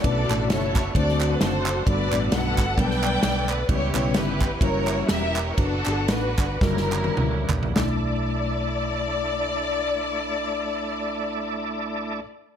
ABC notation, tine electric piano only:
X:1
M:4/4
L:1/8
Q:"Swing" 1/4=121
K:Bm
V:1 name="Tine electric piano"
[A,CDEB] [A,CDEA]2 z [A,=CDEF=c]3 z | [G,B,DFA] [G,B,DFB]2 z [F,G,B,D^AB]3 z | [G,B,CEB] [G,B,CEB]2 z [G,CEF^A]3 z | [DFB] [DFGA]2 z [D,G,EF^A]3 z |
[A,DEd]8- | [A,DEd]8 |]
V:2 name="Tine electric piano" clef=bass
B,,3 z D,3 z | G,,3 z4 z | C,3 z4 z | z8 |
B,,,8- | B,,,8 |]